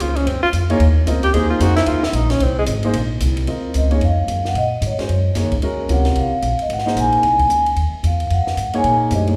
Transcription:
0.00 C#2 F4, hi-hat pedal, ride
0.16 C#4, ride
0.26 F#2 C4, ride
0.42 F4, muted upright bass stroke
0.53 F2, hi-hat pedal, ride
0.70 A#3 D#4 G#4 C#5, ride
0.80 D#2, ride
1.06 C#2 C4 F4 A#4 D#5, hi-hat pedal, ride
1.23 G4, ride
1.33 D#2 A#3 D#4 G#4 C5, ride
1.50 F4
1.60 F2 A#3 D#4 F#4 G#4 C5, hi-hat pedal, ride
1.76 E4, snare, ride
1.86 D#2 F4, ride
2.03 E4, snare
2.13 A#1 D#4, hi-hat pedal, ride
2.30 C#4, snare, ride
2.40 C2 C4, ride
2.59 G#3
2.66 G#1, hi-hat pedal, ride
2.83 A#3 D#4 G#4 C5, ride
2.93 A#1, ride
3.20 C2, hi-hat pedal, ride
3.37 ride
3.47 D#2 C4 F4 A#4 D#5, ride
3.74 C#2 D#5, hi-hat pedal, ride
3.90 A#3 D#4 G#4 C#5, ride
4.01 F2 F5, ride
4.27 F#2, hi-hat pedal, ride
4.45 F#5, snare
4.54 A#2 D#5, ride
4.81 G#2, hi-hat pedal, ride
4.86 C#5
4.98 G#3 C#4 F#4 C5, muted upright bass stroke, snare, ride
5.09 F#2, ride
5.35 F2 A#3 D#4 G#4 C#5, snare, hi-hat pedal, ride
5.44 D#2
5.52 C#2, kick, ride
5.62 D#2 G#3 C#4 F#4 A#4, ride
5.88 C#2 C3 F4 A#4 C#5, hi-hat pedal, ride
5.92 F#5
6.05 snare, ride
6.15 C2 F5, ride
6.32 muted upright bass stroke
6.42 A#1, hi-hat pedal, ride
6.59 D#5, ride
6.69 G#1, ride
6.73 F#5
6.79 snare
6.86 A#3 D#4 G#4 C5, snare
6.96 A#1, hi-hat pedal, ride
7.00 G#5
7.12 ride
7.22 C2, ride
7.39 kick, ride
7.49 C#2, hi-hat pedal, ride
7.66 ride
7.76 D#2, ride
7.93 muted upright bass stroke
8.03 E2 F5, hi-hat pedal, ride
8.20 ride
8.27 F2 F5, ride
8.33 F#5
8.47 muted upright bass stroke, snare
8.57 G#2, hi-hat pedal, ride
8.73 A#3 D#4 G#4 C#5, ride
8.78 G#5
8.84 A#2, ride
9.11 F#2 A3 D4 G4 C5 D#5, hi-hat pedal, ride
9.27 A#3 D#4 G#4 C#5, ride

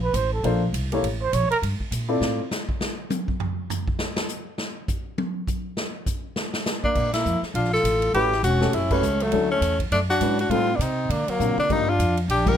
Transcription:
Already playing: A#1
0.03 B4
0.13 A1 C5, hi-hat pedal, ride
0.33 A4
0.44 A#1 A#3 D4 F4 A4 C5, ride
0.73 C2, hi-hat pedal, ride
0.92 A#3 E4 G4 A4 C#5, ride
1.03 A1, ride
1.22 C5
1.33 A#1 C#5, hi-hat pedal, ride
1.50 A#4, muted upright bass stroke, ride
1.62 G2, ride
1.80 muted upright bass stroke, kick
1.91 A#2, hi-hat pedal, ride
2.08 C4 E4 F4 A4 D5
2.21 A2, snare
2.51 snare, hi-hat pedal
2.69 kick
2.81 snare
3.10 hi-hat pedal, high tom
3.28 kick
3.40 floor tom
3.70 floor tom, hi-hat pedal
3.88 kick
3.99 snare
4.16 snare
4.29 hi-hat pedal
4.58 snare
4.88 kick, hi-hat pedal
5.18 high tom
5.48 kick, hi-hat pedal
5.77 snare
6.06 kick, hi-hat pedal
6.36 snare
6.54 snare
6.66 snare, hi-hat pedal
6.84 A#3 D4, kick
6.95 A#2, kick, crash
7.13 A#3 E4, snare, ride
7.25 F2, hi-hat pedal
7.42 muted upright bass stroke, snare
7.54 A#1 D4 F4, ride
7.64 snare
7.73 F4 A4, snare
7.83 A1, hi-hat pedal, ride
8.02 ride
8.14 A1 A3 C#4 E4 F#4 G4 B4, ride
8.32 snare
8.43 E1 C#4 F#4, hi-hat pedal, ride
8.60 A3 C#4 F#4 G4 A4, snare
8.73 F#1 C#4 E4, ride
8.91 A3 C#4 F#4 G4 B4, kick, crash
9.02 C#2, hi-hat pedal
9.20 F#3 A3, ride
9.32 D2 F#3 C#4 D4 E4 A4, ride
9.51 A3 C#4
9.61 E2, hi-hat pedal, ride
9.79 kick, ride
9.91 F#2 A3 D4, ride
10.09 D4 F#4, snare
10.20 G#2 F#3 C#4 D4 E4 B4, hi-hat pedal, ride
10.39 D4 F#4, ride
10.49 A2 G3 A3 C4 D#4 F4 A4, ride
10.75 C3 B3 D4
10.80 C4 D#4, hi-hat pedal, ride
11.09 D3 A#3 D4, ride
11.28 F#3 A#3, muted upright bass stroke, ride
11.39 A#2 F3 A#3 C4 D4 F4, hi-hat pedal, mid tom
11.57 A#3 D4, muted upright bass stroke, mid tom
11.69 G2 F3 G3 A#3 D4 D#4 G4, kick, crash
11.89 D4 F4
11.99 F2, hi-hat pedal, ride
12.17 ride
12.28 A#1 D4 G4, ride
12.46 F3 G3 A#3 D4 G4 A#4, kick, crash

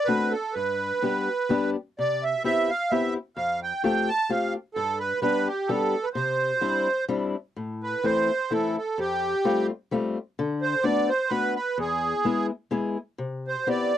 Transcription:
0.05 A3 C4 D4 F#4 B4
0.31 A4
0.54 G2 B4
1.02 G3 B3 D4 G4
1.49 G3 B3 D4 G4
1.99 C3 D5
2.23 E5
2.44 B3 C4 E4 G4 E5
2.69 F5
2.91 B3 C4 E4 G4 E5
3.37 F2 F5
3.63 G5
3.84 A3 C4 F4 G4 G5
4.09 A5
4.29 A3 C4 F4 G4 F5
4.75 G2 A4
4.99 B4
5.22 G3 B3 D4 G4 B4
5.47 G4
5.68 G3 B3 D4 G4 A4
6.04 B4
6.14 C3 C5
6.61 G3 C4 D4 E4
7.09 G3 C4 D4 E4
7.57 A2
7.83 B4
8.04 E3 A3 C4 E4 C5
8.51 E3 A3 C4 E4 A4
8.78 A4
8.98 F2 G4
9.45 G3 A3 C4 F4
9.91 G3 A3 C4 F4
10.39 D3
10.62 C5
10.83 A3 B3 D4 F#4 D5
11.09 C5
11.29 A3 B3 D4 F#4 B4
11.56 B4
11.78 E2 G#4
12.25 G#3 B3 E4 G#4
12.71 G#3 B3 E4 G#4
13.18 C3
13.48 C5
13.67 B3 C4 E4 G4 D5

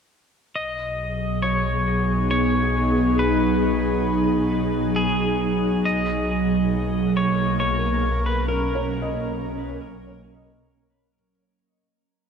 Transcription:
0.54 B1 F#3 D#5
0.87 G#4
1.12 B3
1.42 C#5
1.55 D#4
2.31 C#5
3.19 B4
4.96 G#4
5.85 B1 D#5
6.28 A#3
6.93 A#4
7.17 C#5
7.60 C#5
7.76 C#4
8.26 B4
8.48 A#4
8.75 C#5
9.02 D#5

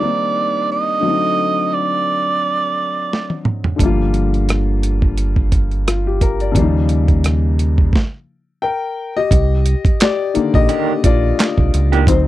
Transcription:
Already playing: A#3 C4 D4 D#4 D5
0.00 D#3 G3 A#3 C4
0.04 D#4
0.72 D#5
1.00 D3 F#3
1.05 A3 C4
1.10 D#4
1.74 D5
3.13 snare
3.30 high tom
3.45 mid tom
3.64 floor tom
3.76 D3 F3, kick
3.80 G1 G3 A#3, closed hi-hat
3.85 F4
4.14 closed hi-hat
4.34 closed hi-hat
4.49 cross-stick, closed hi-hat
4.83 closed hi-hat
5.02 kick
5.18 closed hi-hat
5.36 kick
5.52 kick, closed hi-hat
5.71 closed hi-hat
5.87 F4, cross-stick, closed hi-hat
6.07 G4
6.21 A#4, kick, closed hi-hat
6.40 D5, closed hi-hat
6.52 C#3 F3, kick, closed hi-hat
6.56 D#2 G3 A#3
6.62 D#4
6.89 closed hi-hat
7.08 kick, closed hi-hat
7.24 cross-stick, closed hi-hat
7.59 closed hi-hat
7.78 kick
7.93 kick, snare
8.62 A#4 G5
9.17 G4 D#5
9.31 C2, kick, closed hi-hat
9.66 closed hi-hat
9.85 muted fingered electric bass stroke, kick, closed hi-hat
10.00 G4 D5, snare, clap, closed hi-hat
10.34 D3 D#3 A#3, muted fingered electric bass stroke, closed hi-hat
10.54 A#1 G4 D#5, kick
10.69 D#3 A#3 D4 G4, closed hi-hat
11.04 A#1 F4 D5, kick, closed hi-hat
11.40 snare, clap, closed hi-hat
11.58 C2, kick
11.74 C#2, closed hi-hat
11.92 D#3 A#3 D4 G4, closed hi-hat
12.07 D2 F#3 C4 D#4 C5, kick, closed hi-hat

